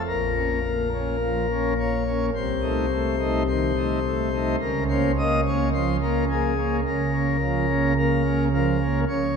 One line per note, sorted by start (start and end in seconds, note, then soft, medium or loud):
0.07 2.30 A#1 medium
0.07 2.30 A#2 medium
0.07 1.73 A#4 loud
0.35 0.60 A#3 medium
0.35 0.59 C#4 medium
0.63 0.89 A#3 medium
0.93 1.16 A#3 medium
0.93 1.16 C#4 medium
1.21 1.46 F3 medium
1.50 1.73 A#3 medium
1.50 1.74 C#4 medium
1.79 2.03 A#3 medium
1.79 2.26 C#5 loud
2.07 2.30 A#3 medium
2.07 2.30 C#4 medium
2.34 4.55 C2 medium
2.34 4.55 C3 medium
2.34 3.43 C5 medium
2.62 2.86 A3 medium
2.62 2.86 D#4 medium
2.91 3.16 A3 medium
3.19 3.42 A3 medium
3.19 3.43 D#4 medium
3.47 3.72 D#3 medium
3.47 4.56 C5 loud
3.77 3.99 A3 medium
3.77 3.99 D#4 medium
4.05 4.29 A3 medium
4.33 4.56 A3 medium
4.33 4.56 D#4 medium
4.60 6.84 C#2 medium
4.60 6.84 C#3 medium
4.60 4.84 A#4 loud
4.88 5.12 A#3 medium
4.88 5.11 C#4 medium
4.88 5.12 C5 loud
5.18 5.42 A#3 medium
5.18 5.41 D#5 loud
5.47 5.69 A#3 medium
5.47 5.69 C#4 medium
5.47 5.69 C#5 loud
5.73 5.97 F3 medium
5.73 5.96 C5 loud
6.01 6.25 A#3 medium
6.01 6.24 C#4 medium
6.01 6.24 A#4 loud
6.29 6.54 A#3 medium
6.29 6.77 G#4 loud
6.57 6.80 A#3 medium
6.57 6.81 C#4 medium
6.86 9.05 C#2 medium
6.86 9.04 C#3 medium
6.86 7.93 A#4 loud
7.13 7.37 A#3 medium
7.13 7.36 C#4 medium
7.41 7.65 F3 medium
7.69 7.92 A#3 medium
7.69 7.92 C#4 medium
7.97 8.22 A#3 medium
7.97 8.44 A#4 loud
8.25 8.48 A#3 medium
8.25 8.48 C#4 medium
8.53 8.77 F3 medium
8.53 9.00 A#4 loud
8.81 9.04 A#3 medium
8.81 9.04 C#4 medium
9.08 9.37 C#2 medium
9.08 9.37 C#3 medium
9.08 9.37 C#5 loud